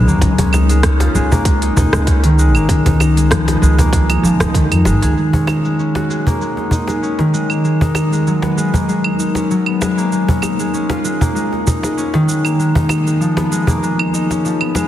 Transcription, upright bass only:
0.08 D#2
0.22 C#2
0.39 C#2
1.15 C#2
1.76 C#2
1.93 C#2
2.55 G#1
2.69 C#2
2.86 C#2
3.62 C#2
4.23 C#2
4.40 C#2
4.71 F2
4.85 G#1
5.02 C#2

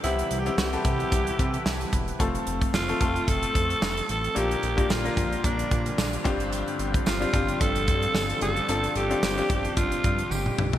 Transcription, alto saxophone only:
0.04 E4
0.40 G4
0.58 G4
2.75 F4
3.29 A4
4.11 A4
4.38 G4
4.92 F4
5.46 D4
7.06 F4
7.61 A4
8.42 A4
8.97 G4
9.77 F4
10.32 G4

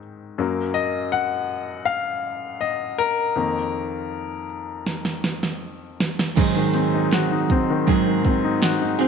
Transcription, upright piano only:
Already playing: G#2 D#3 C4
0.38 F#2 F#3 A#3
0.74 D#5
1.12 F#5
1.85 F5
2.61 D#5
2.98 A#4
3.36 F2 D#3 A#3
6.38 G#2
6.56 D#3
6.74 C4
6.94 D#4
7.13 F#4
7.32 D#4
7.52 C4
7.70 D#3
7.88 G#2
8.07 D#3
8.26 C4
8.45 D#4
8.63 F#4
8.82 D#4
9.01 C4

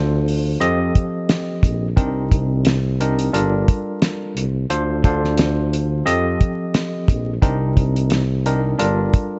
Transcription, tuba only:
Already playing: D2
0.61 F2
1.63 A#1
1.97 C2
3.33 G1
4.36 C2
4.70 D2
6.06 F2
7.08 A#1
7.42 C2
8.79 G1

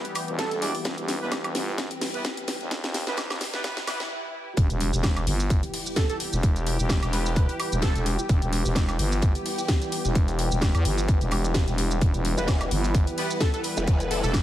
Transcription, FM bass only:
0.28 E1
0.51 E1
0.85 E1
0.98 E1
1.21 E1
1.55 G1
2.61 E1
3.07 E1
3.30 E1
4.57 E1
4.70 E1
4.93 E1
5.27 G1
6.33 E1
6.79 E1
7.03 E1
7.72 E1
7.95 E1
8.29 E1
8.42 E1
8.65 E1
8.99 G1
10.05 E1
10.52 E1
10.75 E2
10.85 G1
11.21 E1
11.68 E1
12.02 E1
12.14 E1
12.71 G1
14.24 E1

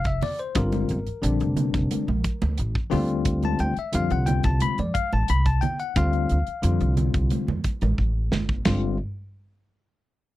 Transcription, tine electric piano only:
0.07 E5
0.23 D5
0.39 C5
0.55 D3 G3 C4 F4 A#4
1.22 D3 G3 C4 D4
2.90 D3 G3 C4 F4
3.45 A5
3.60 G5
3.79 E5
3.92 D3 G3 C4 F4 F5
4.12 F#5
4.26 G5
4.45 A5
4.62 B5
4.80 D5
4.94 F5
5.13 A5
5.30 B5
5.46 A5
5.61 G5
5.80 F#5
5.96 D3 G3 C4 F4 F5
6.62 D3 G3 C4 F4
8.65 D3 G3 C4 F4

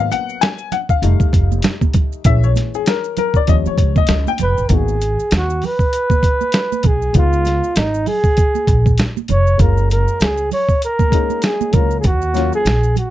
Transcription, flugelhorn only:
4.42 B4
4.68 A#4
4.75 G#4
5.36 F#4
5.65 B4
6.86 G#4
7.17 F4
7.77 D#4
8.08 G#4
9.30 C#5
9.61 A#4
9.92 A#4
10.22 G#4
10.53 C#5
10.85 A#4
11.45 G#4
11.74 A#4
12.00 G#4
12.06 F#4
12.55 G#4
12.98 F#4

